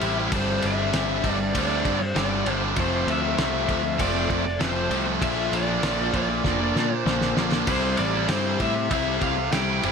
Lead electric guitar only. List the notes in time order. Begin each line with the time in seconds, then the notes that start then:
Already playing: E5
0.36 C5
0.66 E5
1.32 D5
1.58 D5
2.05 C5
2.18 D5
2.80 C5
3.10 E5
4.01 D5
4.63 C5
5.23 E5
5.54 D5
6.16 D5
6.97 C5
7.68 C5
7.98 D5
8.30 C5
8.61 E5
8.92 E5
9.23 F5
9.53 G5